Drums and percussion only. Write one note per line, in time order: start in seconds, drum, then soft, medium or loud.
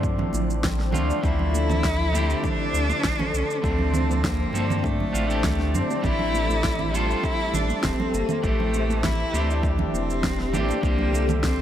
0.03 kick loud
0.03 shaker soft
0.18 low conga medium
0.33 muted conga soft
0.33 shaker medium
0.50 shaker soft
0.63 kick loud
0.63 snare loud
0.63 shaker soft
0.80 snare soft
0.92 low conga medium
0.94 low conga medium
0.94 shaker medium
1.10 muted conga medium
1.10 shaker soft
1.24 kick loud
1.24 shaker soft
1.39 low conga medium
1.54 muted conga soft
1.54 shaker medium
1.69 high conga medium
1.69 low conga medium
1.69 shaker soft
1.84 kick loud
1.84 snare medium
1.84 shaker soft
2.14 high conga medium
2.14 shaker medium
2.30 shaker soft
2.44 kick loud
2.44 low conga medium
2.44 shaker soft
2.74 shaker medium
2.90 muted conga medium
2.90 shaker soft
3.04 kick loud
3.04 snare loud
3.04 shaker soft
3.19 muted conga medium
3.19 low conga medium
3.34 shaker medium
3.50 shaker soft
3.64 kick loud
3.64 shaker soft
3.79 low conga medium
3.94 muted conga medium
3.94 low conga medium
3.94 shaker medium
4.10 high conga medium
4.10 shaker soft
4.24 kick loud
4.24 snare loud
4.24 shaker soft
4.53 high conga medium
4.53 shaker medium
4.70 low conga medium
4.70 shaker soft
4.84 kick loud
4.84 shaker soft
5.00 low conga medium
5.14 muted conga soft
5.14 shaker medium
5.30 shaker soft
5.44 kick loud
5.44 snare loud
5.44 low conga medium
5.44 shaker soft
5.60 snare soft
5.75 low conga medium
5.75 shaker medium
5.90 muted conga medium
5.90 shaker soft
6.04 kick loud
6.04 low conga medium
6.04 shaker soft
6.19 low conga medium
6.34 muted conga medium
6.34 shaker medium
6.49 high conga medium
6.49 shaker soft
6.64 kick loud
6.64 snare medium
6.64 shaker soft
6.79 low conga medium
6.95 high conga medium
6.95 shaker medium
7.10 shaker soft
7.24 kick loud
7.24 shaker soft
7.54 low conga medium
7.54 shaker medium
7.70 muted conga medium
7.70 shaker soft
7.83 kick loud
7.83 snare loud
7.83 shaker soft
8.00 muted conga medium
8.00 low conga loud
8.14 shaker medium
8.29 low conga medium
8.29 shaker soft
8.44 kick loud
8.44 shaker soft
8.60 low conga medium
8.74 muted conga soft
8.74 shaker medium
8.89 high conga medium
8.89 shaker soft
9.03 kick loud
9.03 snare medium
9.03 low conga medium
9.03 shaker soft
9.34 high conga medium
9.34 shaker medium
9.50 shaker soft
9.63 kick loud
9.63 shaker soft
9.78 low conga medium
9.94 muted conga soft
9.94 shaker medium
10.10 shaker soft
10.23 kick loud
10.23 snare loud
10.23 shaker soft
10.39 snare soft
10.53 low conga medium
10.53 shaker medium
10.69 muted conga soft
10.69 shaker soft
10.83 kick loud
10.83 shaker soft
10.99 low conga medium
11.13 muted conga soft
11.13 shaker medium
11.28 high conga medium
11.28 low conga medium
11.28 shaker soft
11.43 kick loud
11.43 snare loud
11.43 shaker soft